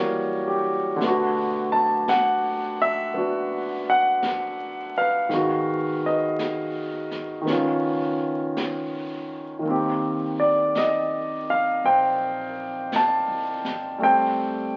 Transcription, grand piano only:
0, 0, Header, 1, 2, 480
1, 0, Start_track
1, 0, Tempo, 1077199
1, 444, Time_signature, 4, 2, 24, 8
1, 2844, Tempo, 1088929
1, 6540, End_track
2, 0, Start_track
2, 0, Title_t, "Grand piano"
2, 0, Program_c, 0, 0
2, 0, Control_c, 0, 64, 127
2, 0, Note_on_c, 0, 52, 51
2, 0, Note_on_c, 0, 55, 52
2, 0, Note_on_c, 0, 58, 49
2, 0, Note_on_c, 0, 66, 60
2, 0, Note_on_c, 0, 70, 43
2, 0, Note_on_c, 0, 73, 82
2, 212, Note_on_c, 0, 67, 48
2, 265, Note_off_c, 0, 73, 0
2, 347, Note_off_c, 0, 70, 0
2, 428, Note_on_c, 0, 50, 51
2, 440, Note_off_c, 0, 52, 0
2, 443, Note_on_c, 0, 57, 44
2, 445, Note_off_c, 0, 55, 0
2, 449, Note_off_c, 0, 58, 0
2, 450, Control_c, 0, 64, 0
2, 452, Note_off_c, 0, 66, 0
2, 460, Note_on_c, 0, 59, 43
2, 477, Note_on_c, 0, 66, 52
2, 541, Control_c, 0, 64, 127
2, 550, Note_off_c, 0, 67, 0
2, 767, Note_on_c, 0, 81, 80
2, 915, Note_off_c, 0, 81, 0
2, 932, Note_on_c, 0, 78, 82
2, 1255, Note_on_c, 0, 76, 92
2, 1256, Note_off_c, 0, 78, 0
2, 1392, Note_off_c, 0, 59, 0
2, 1399, Note_on_c, 0, 59, 41
2, 1405, Note_on_c, 0, 62, 37
2, 1406, Note_off_c, 0, 66, 0
2, 1413, Note_on_c, 0, 66, 39
2, 1736, Note_on_c, 0, 78, 92
2, 1741, Note_off_c, 0, 76, 0
2, 2217, Note_on_c, 0, 77, 89
2, 2218, Note_on_c, 0, 71, 53
2, 2221, Note_off_c, 0, 78, 0
2, 2353, Note_off_c, 0, 50, 0
2, 2357, Note_on_c, 0, 51, 45
2, 2358, Note_off_c, 0, 59, 0
2, 2360, Note_off_c, 0, 57, 0
2, 2362, Note_off_c, 0, 62, 0
2, 2363, Note_on_c, 0, 56, 36
2, 2366, Note_off_c, 0, 66, 0
2, 2366, Control_c, 0, 64, 0
2, 2371, Note_on_c, 0, 59, 37
2, 2379, Note_on_c, 0, 66, 48
2, 2433, Control_c, 0, 64, 127
2, 2693, Note_off_c, 0, 71, 0
2, 2699, Note_on_c, 0, 71, 41
2, 2701, Note_on_c, 0, 75, 62
2, 2704, Note_off_c, 0, 77, 0
2, 3293, Note_off_c, 0, 51, 0
2, 3299, Note_on_c, 0, 51, 48
2, 3311, Note_off_c, 0, 59, 0
2, 3314, Note_off_c, 0, 71, 0
2, 3314, Note_off_c, 0, 75, 0
2, 3318, Note_on_c, 0, 59, 44
2, 3323, Note_off_c, 0, 56, 0
2, 3327, Control_c, 0, 64, 0
2, 3331, Note_off_c, 0, 66, 0
2, 3333, Note_on_c, 0, 61, 46
2, 3346, Note_on_c, 0, 65, 52
2, 3396, Control_c, 0, 64, 127
2, 4252, Note_off_c, 0, 51, 0
2, 4259, Note_on_c, 0, 51, 42
2, 4277, Note_on_c, 0, 58, 38
2, 4282, Note_off_c, 0, 59, 0
2, 4289, Control_c, 0, 64, 0
2, 4290, Note_off_c, 0, 61, 0
2, 4294, Note_on_c, 0, 60, 39
2, 4296, Note_off_c, 0, 65, 0
2, 4310, Note_on_c, 0, 67, 44
2, 4379, Control_c, 0, 64, 127
2, 4613, Note_on_c, 0, 74, 66
2, 4759, Note_off_c, 0, 74, 0
2, 4780, Note_on_c, 0, 75, 70
2, 5100, Note_on_c, 0, 77, 83
2, 5101, Note_off_c, 0, 75, 0
2, 5256, Note_on_c, 0, 72, 57
2, 5257, Note_on_c, 0, 79, 85
2, 5259, Note_off_c, 0, 77, 0
2, 5743, Note_on_c, 0, 81, 86
2, 5746, Note_off_c, 0, 79, 0
2, 6193, Note_off_c, 0, 51, 0
2, 6193, Note_off_c, 0, 72, 0
2, 6195, Note_on_c, 0, 55, 43
2, 6196, Note_off_c, 0, 81, 0
2, 6201, Note_off_c, 0, 58, 0
2, 6203, Note_on_c, 0, 57, 41
2, 6204, Note_off_c, 0, 60, 0
2, 6210, Note_on_c, 0, 60, 41
2, 6211, Control_c, 0, 64, 0
2, 6217, Note_on_c, 0, 69, 45
2, 6217, Note_on_c, 0, 72, 58
2, 6217, Note_on_c, 0, 79, 86
2, 6218, Note_off_c, 0, 67, 0
2, 6301, Control_c, 0, 64, 127
2, 6540, Note_off_c, 0, 55, 0
2, 6540, Note_off_c, 0, 57, 0
2, 6540, Note_off_c, 0, 60, 0
2, 6540, Note_off_c, 0, 69, 0
2, 6540, Note_off_c, 0, 72, 0
2, 6540, Note_off_c, 0, 79, 0
2, 6540, End_track
0, 0, End_of_file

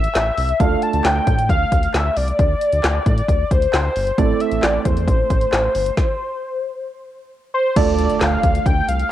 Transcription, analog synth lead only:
0, 0, Header, 1, 2, 480
1, 0, Start_track
1, 0, Key_signature, -1, "minor"
1, 0, Tempo, 447761
1, 643, Time_signature, 4, 2, 24, 8
1, 9775, End_track
2, 0, Start_track
2, 0, Title_t, "Analog synth lead"
2, 0, Program_c, 0, 81
2, 0, Note_on_c, 0, 76, 112
2, 646, Note_on_c, 0, 77, 113
2, 662, Note_off_c, 0, 76, 0
2, 886, Note_on_c, 0, 81, 108
2, 902, Note_off_c, 0, 77, 0
2, 1126, Note_on_c, 0, 79, 110
2, 1142, Note_off_c, 0, 81, 0
2, 1600, Note_off_c, 0, 79, 0
2, 1606, Note_on_c, 0, 77, 108
2, 2086, Note_on_c, 0, 76, 96
2, 2103, Note_off_c, 0, 77, 0
2, 2325, Note_on_c, 0, 74, 108
2, 2341, Note_off_c, 0, 76, 0
2, 3765, Note_on_c, 0, 72, 101
2, 3781, Note_off_c, 0, 74, 0
2, 4486, Note_on_c, 0, 74, 99
2, 4502, Note_off_c, 0, 72, 0
2, 4727, Note_on_c, 0, 76, 95
2, 4743, Note_off_c, 0, 74, 0
2, 4966, Note_on_c, 0, 74, 97
2, 4982, Note_off_c, 0, 76, 0
2, 5205, Note_on_c, 0, 72, 89
2, 5221, Note_off_c, 0, 74, 0
2, 7844, Note_off_c, 0, 72, 0
2, 8083, Note_on_c, 0, 72, 96
2, 8322, Note_on_c, 0, 74, 111
2, 8338, Note_off_c, 0, 72, 0
2, 8803, Note_on_c, 0, 77, 108
2, 8819, Note_off_c, 0, 74, 0
2, 9283, Note_on_c, 0, 79, 115
2, 9299, Note_off_c, 0, 77, 0
2, 9522, Note_on_c, 0, 77, 107
2, 9539, Note_off_c, 0, 79, 0
2, 9775, Note_off_c, 0, 77, 0
2, 9775, End_track
0, 0, End_of_file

